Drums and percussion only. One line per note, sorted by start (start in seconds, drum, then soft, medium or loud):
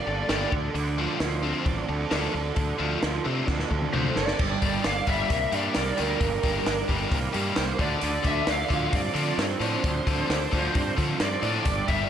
0.29 snare medium
0.29 open hi-hat soft
0.52 kick medium
0.75 open hi-hat soft
1.20 snare medium
1.20 open hi-hat soft
1.66 kick medium
1.66 open hi-hat soft
2.11 snare medium
2.11 open hi-hat soft
2.56 kick medium
2.56 open hi-hat soft
3.03 snare medium
3.03 open hi-hat soft
3.48 kick medium
3.48 snare soft
3.59 snare soft
3.71 kick medium
3.82 mid tom medium
3.94 mid tom medium
4.05 mid tom medium
4.16 snare medium
4.28 snare medium
4.39 kick loud
4.39 crash medium
4.62 kick medium
4.62 open hi-hat soft
4.84 snare loud
4.84 open hi-hat medium
5.07 kick medium
5.07 open hi-hat medium
5.30 kick loud
5.30 open hi-hat medium
5.52 open hi-hat medium
5.75 snare loud
5.75 open hi-hat medium
5.98 open hi-hat medium
6.21 kick loud
6.21 open hi-hat medium
6.43 kick medium
6.43 open hi-hat medium
6.66 snare loud
6.66 open hi-hat medium
6.89 kick medium
6.89 open hi-hat soft
7.12 kick loud
7.12 open hi-hat medium
7.34 open hi-hat medium
7.56 snare loud
7.56 open hi-hat medium
7.79 kick medium
7.79 open hi-hat soft
8.01 open hi-hat medium
8.24 kick medium
8.24 open hi-hat soft
8.47 snare loud
8.47 open hi-hat medium
8.70 kick medium
8.70 open hi-hat soft
8.93 kick loud
8.93 open hi-hat medium
9.16 open hi-hat medium
9.39 snare loud
9.39 open hi-hat medium
9.61 open hi-hat soft
9.84 kick loud
9.84 open hi-hat medium
10.07 kick medium
10.07 open hi-hat medium
10.30 snare loud
10.30 open hi-hat medium
10.53 kick medium
10.53 open hi-hat medium
10.75 kick medium
10.75 open hi-hat medium
10.98 kick medium
10.98 open hi-hat medium
11.20 snare loud
11.20 open hi-hat medium
11.43 open hi-hat soft
11.65 kick loud
11.65 open hi-hat medium
11.65 tambourine medium
11.88 kick medium
11.88 open hi-hat soft